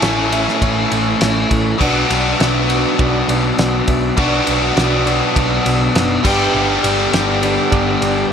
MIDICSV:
0, 0, Header, 1, 6, 480
1, 0, Start_track
1, 0, Key_signature, 2, "minor"
1, 0, Tempo, 592300
1, 1462, Time_signature, 4, 2, 24, 8
1, 6748, End_track
2, 0, Start_track
2, 0, Title_t, "Reed electric piano"
2, 0, Program_c, 0, 4
2, 18, Note_on_c, 0, 61, 85
2, 19, Note_on_c, 0, 64, 78
2, 19, Note_on_c, 0, 69, 76
2, 20, Note_on_c, 0, 73, 96
2, 211, Note_off_c, 0, 61, 0
2, 211, Note_off_c, 0, 69, 0
2, 212, Note_off_c, 0, 64, 0
2, 212, Note_off_c, 0, 73, 0
2, 262, Note_on_c, 0, 69, 80
2, 265, Note_on_c, 0, 64, 77
2, 266, Note_on_c, 0, 61, 83
2, 266, Note_on_c, 0, 76, 102
2, 453, Note_off_c, 0, 69, 0
2, 454, Note_off_c, 0, 64, 0
2, 455, Note_off_c, 0, 61, 0
2, 455, Note_off_c, 0, 76, 0
2, 501, Note_on_c, 0, 61, 105
2, 502, Note_on_c, 0, 69, 93
2, 504, Note_on_c, 0, 64, 97
2, 506, Note_on_c, 0, 73, 125
2, 693, Note_off_c, 0, 61, 0
2, 693, Note_off_c, 0, 69, 0
2, 694, Note_off_c, 0, 64, 0
2, 695, Note_off_c, 0, 73, 0
2, 746, Note_on_c, 0, 73, 89
2, 750, Note_on_c, 0, 61, 85
2, 751, Note_on_c, 0, 64, 78
2, 751, Note_on_c, 0, 69, 81
2, 936, Note_off_c, 0, 73, 0
2, 938, Note_off_c, 0, 61, 0
2, 938, Note_off_c, 0, 64, 0
2, 938, Note_off_c, 0, 69, 0
2, 989, Note_on_c, 0, 73, 97
2, 993, Note_on_c, 0, 64, 73
2, 993, Note_on_c, 0, 69, 75
2, 995, Note_on_c, 0, 61, 76
2, 1177, Note_off_c, 0, 73, 0
2, 1179, Note_off_c, 0, 64, 0
2, 1179, Note_off_c, 0, 69, 0
2, 1180, Note_off_c, 0, 61, 0
2, 1232, Note_on_c, 0, 64, 80
2, 1234, Note_on_c, 0, 61, 80
2, 1234, Note_on_c, 0, 69, 76
2, 1234, Note_on_c, 0, 73, 91
2, 1419, Note_off_c, 0, 64, 0
2, 1420, Note_off_c, 0, 61, 0
2, 1420, Note_off_c, 0, 69, 0
2, 1420, Note_off_c, 0, 73, 0
2, 1476, Note_on_c, 0, 62, 112
2, 1477, Note_on_c, 0, 66, 99
2, 1478, Note_on_c, 0, 74, 108
2, 1481, Note_on_c, 0, 71, 93
2, 1661, Note_off_c, 0, 62, 0
2, 1662, Note_off_c, 0, 66, 0
2, 1662, Note_off_c, 0, 74, 0
2, 1663, Note_off_c, 0, 71, 0
2, 1719, Note_on_c, 0, 62, 84
2, 1719, Note_on_c, 0, 66, 85
2, 1719, Note_on_c, 0, 74, 93
2, 1721, Note_on_c, 0, 71, 79
2, 1903, Note_off_c, 0, 62, 0
2, 1903, Note_off_c, 0, 66, 0
2, 1903, Note_off_c, 0, 74, 0
2, 1904, Note_off_c, 0, 71, 0
2, 1953, Note_on_c, 0, 76, 90
2, 1954, Note_on_c, 0, 62, 84
2, 1954, Note_on_c, 0, 66, 79
2, 1957, Note_on_c, 0, 71, 80
2, 2140, Note_off_c, 0, 62, 0
2, 2140, Note_off_c, 0, 76, 0
2, 2141, Note_off_c, 0, 66, 0
2, 2142, Note_off_c, 0, 71, 0
2, 2188, Note_on_c, 0, 71, 80
2, 2189, Note_on_c, 0, 62, 84
2, 2193, Note_on_c, 0, 66, 84
2, 2193, Note_on_c, 0, 74, 99
2, 2378, Note_off_c, 0, 62, 0
2, 2378, Note_off_c, 0, 71, 0
2, 2380, Note_off_c, 0, 66, 0
2, 2380, Note_off_c, 0, 74, 0
2, 2425, Note_on_c, 0, 74, 124
2, 2428, Note_on_c, 0, 66, 98
2, 2428, Note_on_c, 0, 71, 99
2, 2429, Note_on_c, 0, 62, 104
2, 2616, Note_off_c, 0, 74, 0
2, 2618, Note_off_c, 0, 62, 0
2, 2618, Note_off_c, 0, 66, 0
2, 2618, Note_off_c, 0, 71, 0
2, 2662, Note_on_c, 0, 62, 81
2, 2664, Note_on_c, 0, 71, 77
2, 2665, Note_on_c, 0, 66, 75
2, 2666, Note_on_c, 0, 74, 92
2, 2855, Note_off_c, 0, 62, 0
2, 2856, Note_off_c, 0, 66, 0
2, 2856, Note_off_c, 0, 71, 0
2, 2857, Note_off_c, 0, 74, 0
2, 2907, Note_on_c, 0, 74, 94
2, 2908, Note_on_c, 0, 71, 78
2, 2909, Note_on_c, 0, 62, 85
2, 2909, Note_on_c, 0, 66, 76
2, 3098, Note_off_c, 0, 62, 0
2, 3098, Note_off_c, 0, 66, 0
2, 3098, Note_off_c, 0, 71, 0
2, 3098, Note_off_c, 0, 74, 0
2, 3140, Note_on_c, 0, 62, 81
2, 3142, Note_on_c, 0, 66, 81
2, 3142, Note_on_c, 0, 76, 96
2, 3144, Note_on_c, 0, 71, 75
2, 3334, Note_off_c, 0, 62, 0
2, 3335, Note_off_c, 0, 66, 0
2, 3335, Note_off_c, 0, 76, 0
2, 3336, Note_off_c, 0, 71, 0
2, 3378, Note_on_c, 0, 66, 97
2, 3378, Note_on_c, 0, 71, 96
2, 3379, Note_on_c, 0, 74, 119
2, 3384, Note_on_c, 0, 62, 109
2, 3573, Note_off_c, 0, 66, 0
2, 3573, Note_off_c, 0, 71, 0
2, 3574, Note_off_c, 0, 74, 0
2, 3576, Note_off_c, 0, 62, 0
2, 3623, Note_on_c, 0, 66, 78
2, 3623, Note_on_c, 0, 71, 82
2, 3625, Note_on_c, 0, 62, 90
2, 3625, Note_on_c, 0, 74, 96
2, 3816, Note_off_c, 0, 66, 0
2, 3816, Note_off_c, 0, 71, 0
2, 3817, Note_off_c, 0, 62, 0
2, 3817, Note_off_c, 0, 74, 0
2, 3863, Note_on_c, 0, 62, 86
2, 3863, Note_on_c, 0, 71, 82
2, 3863, Note_on_c, 0, 74, 96
2, 3864, Note_on_c, 0, 66, 80
2, 4056, Note_off_c, 0, 62, 0
2, 4056, Note_off_c, 0, 66, 0
2, 4056, Note_off_c, 0, 71, 0
2, 4056, Note_off_c, 0, 74, 0
2, 4102, Note_on_c, 0, 62, 84
2, 4102, Note_on_c, 0, 66, 82
2, 4103, Note_on_c, 0, 74, 97
2, 4105, Note_on_c, 0, 71, 75
2, 4295, Note_off_c, 0, 62, 0
2, 4295, Note_off_c, 0, 66, 0
2, 4296, Note_off_c, 0, 74, 0
2, 4297, Note_off_c, 0, 71, 0
2, 4342, Note_on_c, 0, 74, 127
2, 4345, Note_on_c, 0, 66, 105
2, 4347, Note_on_c, 0, 62, 109
2, 4347, Note_on_c, 0, 71, 101
2, 4535, Note_off_c, 0, 74, 0
2, 4537, Note_off_c, 0, 66, 0
2, 4537, Note_off_c, 0, 71, 0
2, 4538, Note_off_c, 0, 62, 0
2, 4585, Note_on_c, 0, 62, 85
2, 4585, Note_on_c, 0, 66, 81
2, 4586, Note_on_c, 0, 74, 88
2, 4587, Note_on_c, 0, 71, 77
2, 4776, Note_off_c, 0, 66, 0
2, 4777, Note_off_c, 0, 62, 0
2, 4777, Note_off_c, 0, 74, 0
2, 4778, Note_off_c, 0, 71, 0
2, 4824, Note_on_c, 0, 66, 78
2, 4826, Note_on_c, 0, 71, 81
2, 4826, Note_on_c, 0, 74, 85
2, 4826, Note_on_c, 0, 81, 76
2, 4828, Note_on_c, 0, 62, 88
2, 4936, Note_off_c, 0, 81, 0
2, 4952, Note_on_c, 0, 83, 76
2, 5016, Note_off_c, 0, 66, 0
2, 5017, Note_off_c, 0, 71, 0
2, 5017, Note_off_c, 0, 74, 0
2, 5018, Note_off_c, 0, 62, 0
2, 5067, Note_on_c, 0, 67, 85
2, 5070, Note_on_c, 0, 62, 87
2, 5070, Note_on_c, 0, 74, 106
2, 5072, Note_on_c, 0, 71, 85
2, 5283, Note_off_c, 0, 83, 0
2, 5449, Note_off_c, 0, 67, 0
2, 5451, Note_off_c, 0, 62, 0
2, 5451, Note_off_c, 0, 74, 0
2, 5452, Note_off_c, 0, 71, 0
2, 5536, Note_on_c, 0, 62, 89
2, 5536, Note_on_c, 0, 67, 81
2, 5538, Note_on_c, 0, 74, 104
2, 5539, Note_on_c, 0, 71, 79
2, 5732, Note_off_c, 0, 62, 0
2, 5732, Note_off_c, 0, 67, 0
2, 5733, Note_off_c, 0, 71, 0
2, 5733, Note_off_c, 0, 74, 0
2, 5780, Note_on_c, 0, 74, 97
2, 5781, Note_on_c, 0, 62, 89
2, 5781, Note_on_c, 0, 71, 76
2, 5783, Note_on_c, 0, 67, 87
2, 5974, Note_off_c, 0, 62, 0
2, 5974, Note_off_c, 0, 71, 0
2, 5974, Note_off_c, 0, 74, 0
2, 5975, Note_off_c, 0, 67, 0
2, 6020, Note_on_c, 0, 71, 81
2, 6021, Note_on_c, 0, 67, 86
2, 6023, Note_on_c, 0, 62, 86
2, 6024, Note_on_c, 0, 74, 101
2, 6213, Note_off_c, 0, 71, 0
2, 6214, Note_off_c, 0, 67, 0
2, 6215, Note_off_c, 0, 62, 0
2, 6215, Note_off_c, 0, 74, 0
2, 6248, Note_on_c, 0, 62, 116
2, 6249, Note_on_c, 0, 71, 95
2, 6250, Note_on_c, 0, 74, 122
2, 6252, Note_on_c, 0, 67, 104
2, 6447, Note_off_c, 0, 62, 0
2, 6448, Note_off_c, 0, 71, 0
2, 6448, Note_off_c, 0, 74, 0
2, 6449, Note_off_c, 0, 67, 0
2, 6487, Note_on_c, 0, 67, 74
2, 6488, Note_on_c, 0, 62, 80
2, 6489, Note_on_c, 0, 71, 78
2, 6491, Note_on_c, 0, 74, 92
2, 6686, Note_off_c, 0, 67, 0
2, 6687, Note_off_c, 0, 62, 0
2, 6687, Note_off_c, 0, 71, 0
2, 6688, Note_off_c, 0, 74, 0
2, 6748, End_track
3, 0, Start_track
3, 0, Title_t, "Tonewheel organ"
3, 0, Program_c, 1, 16
3, 0, Note_on_c, 1, 57, 71
3, 0, Note_on_c, 1, 61, 72
3, 0, Note_on_c, 1, 64, 72
3, 0, Note_on_c, 1, 73, 66
3, 1439, Note_off_c, 1, 57, 0
3, 1440, Note_off_c, 1, 61, 0
3, 1441, Note_off_c, 1, 73, 0
3, 1443, Note_off_c, 1, 64, 0
3, 1465, Note_on_c, 1, 59, 68
3, 1466, Note_on_c, 1, 62, 72
3, 1469, Note_on_c, 1, 66, 72
3, 1469, Note_on_c, 1, 74, 71
3, 3366, Note_off_c, 1, 59, 0
3, 3367, Note_off_c, 1, 62, 0
3, 3368, Note_off_c, 1, 74, 0
3, 3369, Note_off_c, 1, 66, 0
3, 3385, Note_on_c, 1, 62, 73
3, 3389, Note_on_c, 1, 59, 69
3, 3389, Note_on_c, 1, 66, 72
3, 3389, Note_on_c, 1, 74, 72
3, 5048, Note_off_c, 1, 62, 0
3, 5050, Note_off_c, 1, 59, 0
3, 5050, Note_off_c, 1, 66, 0
3, 5050, Note_off_c, 1, 74, 0
3, 5060, Note_on_c, 1, 74, 73
3, 5065, Note_on_c, 1, 62, 75
3, 5066, Note_on_c, 1, 59, 68
3, 5066, Note_on_c, 1, 67, 75
3, 6748, Note_off_c, 1, 59, 0
3, 6748, Note_off_c, 1, 62, 0
3, 6748, Note_off_c, 1, 67, 0
3, 6748, Note_off_c, 1, 74, 0
3, 6748, End_track
4, 0, Start_track
4, 0, Title_t, "Overdriven electric guitar"
4, 0, Program_c, 2, 29
4, 0, Note_on_c, 2, 45, 97
4, 0, Note_on_c, 2, 52, 98
4, 0, Note_on_c, 2, 57, 93
4, 0, Note_on_c, 2, 61, 96
4, 0, Note_on_c, 2, 69, 113
4, 1440, Note_off_c, 2, 45, 0
4, 1443, Note_on_c, 2, 47, 92
4, 1446, Note_off_c, 2, 52, 0
4, 1449, Note_off_c, 2, 57, 0
4, 1453, Note_off_c, 2, 61, 0
4, 1455, Note_off_c, 2, 69, 0
4, 1455, Note_on_c, 2, 54, 102
4, 1463, Note_on_c, 2, 59, 88
4, 1468, Note_on_c, 2, 62, 99
4, 1474, Note_on_c, 2, 66, 94
4, 3360, Note_off_c, 2, 47, 0
4, 3366, Note_off_c, 2, 54, 0
4, 3375, Note_off_c, 2, 66, 0
4, 3378, Note_on_c, 2, 47, 94
4, 3389, Note_on_c, 2, 54, 89
4, 3393, Note_off_c, 2, 59, 0
4, 3396, Note_on_c, 2, 59, 101
4, 3398, Note_off_c, 2, 62, 0
4, 3401, Note_on_c, 2, 62, 99
4, 3407, Note_on_c, 2, 66, 101
4, 5046, Note_off_c, 2, 47, 0
4, 5052, Note_off_c, 2, 54, 0
4, 5054, Note_on_c, 2, 43, 89
4, 5056, Note_off_c, 2, 59, 0
4, 5058, Note_off_c, 2, 62, 0
4, 5061, Note_off_c, 2, 66, 0
4, 5062, Note_on_c, 2, 50, 96
4, 5064, Note_on_c, 2, 55, 93
4, 5073, Note_on_c, 2, 59, 102
4, 5077, Note_on_c, 2, 62, 95
4, 5081, Note_on_c, 2, 67, 112
4, 6748, Note_off_c, 2, 43, 0
4, 6748, Note_off_c, 2, 50, 0
4, 6748, Note_off_c, 2, 55, 0
4, 6748, Note_off_c, 2, 59, 0
4, 6748, Note_off_c, 2, 62, 0
4, 6748, Note_off_c, 2, 67, 0
4, 6748, End_track
5, 0, Start_track
5, 0, Title_t, "Picked electric bass"
5, 0, Program_c, 3, 34
5, 18, Note_on_c, 3, 33, 88
5, 371, Note_off_c, 3, 33, 0
5, 504, Note_on_c, 3, 33, 95
5, 679, Note_off_c, 3, 33, 0
5, 745, Note_on_c, 3, 33, 88
5, 919, Note_off_c, 3, 33, 0
5, 989, Note_on_c, 3, 33, 85
5, 1162, Note_off_c, 3, 33, 0
5, 1223, Note_on_c, 3, 33, 91
5, 1398, Note_off_c, 3, 33, 0
5, 1465, Note_on_c, 3, 35, 96
5, 1640, Note_off_c, 3, 35, 0
5, 1707, Note_on_c, 3, 35, 103
5, 1881, Note_off_c, 3, 35, 0
5, 1946, Note_on_c, 3, 35, 90
5, 2296, Note_off_c, 3, 35, 0
5, 2428, Note_on_c, 3, 35, 92
5, 2602, Note_off_c, 3, 35, 0
5, 2660, Note_on_c, 3, 35, 97
5, 2837, Note_off_c, 3, 35, 0
5, 2905, Note_on_c, 3, 35, 93
5, 3081, Note_off_c, 3, 35, 0
5, 3147, Note_on_c, 3, 35, 88
5, 3322, Note_off_c, 3, 35, 0
5, 3385, Note_on_c, 3, 35, 90
5, 3560, Note_off_c, 3, 35, 0
5, 3632, Note_on_c, 3, 35, 96
5, 3805, Note_off_c, 3, 35, 0
5, 3865, Note_on_c, 3, 35, 94
5, 4217, Note_off_c, 3, 35, 0
5, 4346, Note_on_c, 3, 35, 95
5, 4521, Note_off_c, 3, 35, 0
5, 4584, Note_on_c, 3, 35, 96
5, 4760, Note_off_c, 3, 35, 0
5, 4822, Note_on_c, 3, 30, 86
5, 4998, Note_off_c, 3, 30, 0
5, 5066, Note_on_c, 3, 31, 93
5, 5241, Note_off_c, 3, 31, 0
5, 5304, Note_on_c, 3, 31, 100
5, 5480, Note_off_c, 3, 31, 0
5, 5544, Note_on_c, 3, 31, 104
5, 5719, Note_off_c, 3, 31, 0
5, 5783, Note_on_c, 3, 31, 92
5, 6134, Note_off_c, 3, 31, 0
5, 6261, Note_on_c, 3, 31, 103
5, 6437, Note_off_c, 3, 31, 0
5, 6494, Note_on_c, 3, 31, 90
5, 6673, Note_off_c, 3, 31, 0
5, 6748, End_track
6, 0, Start_track
6, 0, Title_t, "Drums"
6, 18, Note_on_c, 9, 51, 102
6, 25, Note_on_c, 9, 38, 106
6, 99, Note_off_c, 9, 51, 0
6, 106, Note_off_c, 9, 38, 0
6, 263, Note_on_c, 9, 51, 77
6, 344, Note_off_c, 9, 51, 0
6, 390, Note_on_c, 9, 38, 33
6, 471, Note_off_c, 9, 38, 0
6, 501, Note_on_c, 9, 36, 112
6, 502, Note_on_c, 9, 51, 110
6, 582, Note_off_c, 9, 36, 0
6, 583, Note_off_c, 9, 51, 0
6, 742, Note_on_c, 9, 51, 72
6, 823, Note_off_c, 9, 51, 0
6, 980, Note_on_c, 9, 51, 115
6, 986, Note_on_c, 9, 38, 116
6, 1061, Note_off_c, 9, 51, 0
6, 1067, Note_off_c, 9, 38, 0
6, 1223, Note_on_c, 9, 51, 80
6, 1224, Note_on_c, 9, 36, 90
6, 1304, Note_off_c, 9, 51, 0
6, 1305, Note_off_c, 9, 36, 0
6, 1465, Note_on_c, 9, 36, 108
6, 1466, Note_on_c, 9, 49, 98
6, 1546, Note_off_c, 9, 36, 0
6, 1547, Note_off_c, 9, 49, 0
6, 1706, Note_on_c, 9, 51, 83
6, 1787, Note_off_c, 9, 51, 0
6, 1947, Note_on_c, 9, 51, 93
6, 1953, Note_on_c, 9, 38, 108
6, 2028, Note_off_c, 9, 51, 0
6, 2034, Note_off_c, 9, 38, 0
6, 2186, Note_on_c, 9, 51, 65
6, 2267, Note_off_c, 9, 51, 0
6, 2424, Note_on_c, 9, 51, 97
6, 2426, Note_on_c, 9, 36, 120
6, 2505, Note_off_c, 9, 51, 0
6, 2507, Note_off_c, 9, 36, 0
6, 2667, Note_on_c, 9, 51, 73
6, 2748, Note_off_c, 9, 51, 0
6, 2905, Note_on_c, 9, 51, 99
6, 2912, Note_on_c, 9, 38, 113
6, 2986, Note_off_c, 9, 51, 0
6, 2993, Note_off_c, 9, 38, 0
6, 3141, Note_on_c, 9, 51, 74
6, 3144, Note_on_c, 9, 36, 85
6, 3222, Note_off_c, 9, 51, 0
6, 3225, Note_off_c, 9, 36, 0
6, 3382, Note_on_c, 9, 51, 100
6, 3385, Note_on_c, 9, 36, 116
6, 3463, Note_off_c, 9, 51, 0
6, 3466, Note_off_c, 9, 36, 0
6, 3622, Note_on_c, 9, 51, 77
6, 3703, Note_off_c, 9, 51, 0
6, 3864, Note_on_c, 9, 51, 93
6, 3871, Note_on_c, 9, 38, 109
6, 3945, Note_off_c, 9, 51, 0
6, 3952, Note_off_c, 9, 38, 0
6, 4108, Note_on_c, 9, 51, 69
6, 4189, Note_off_c, 9, 51, 0
6, 4346, Note_on_c, 9, 36, 114
6, 4349, Note_on_c, 9, 51, 110
6, 4427, Note_off_c, 9, 36, 0
6, 4430, Note_off_c, 9, 51, 0
6, 4586, Note_on_c, 9, 51, 78
6, 4667, Note_off_c, 9, 51, 0
6, 4825, Note_on_c, 9, 51, 109
6, 4832, Note_on_c, 9, 38, 109
6, 4906, Note_off_c, 9, 51, 0
6, 4913, Note_off_c, 9, 38, 0
6, 5063, Note_on_c, 9, 36, 114
6, 5063, Note_on_c, 9, 57, 109
6, 5144, Note_off_c, 9, 36, 0
6, 5144, Note_off_c, 9, 57, 0
6, 5545, Note_on_c, 9, 51, 89
6, 5626, Note_off_c, 9, 51, 0
6, 5781, Note_on_c, 9, 51, 107
6, 5788, Note_on_c, 9, 38, 110
6, 5862, Note_off_c, 9, 51, 0
6, 5869, Note_off_c, 9, 38, 0
6, 6020, Note_on_c, 9, 51, 75
6, 6101, Note_off_c, 9, 51, 0
6, 6259, Note_on_c, 9, 36, 106
6, 6259, Note_on_c, 9, 51, 103
6, 6340, Note_off_c, 9, 36, 0
6, 6340, Note_off_c, 9, 51, 0
6, 6500, Note_on_c, 9, 51, 71
6, 6581, Note_off_c, 9, 51, 0
6, 6748, End_track
0, 0, End_of_file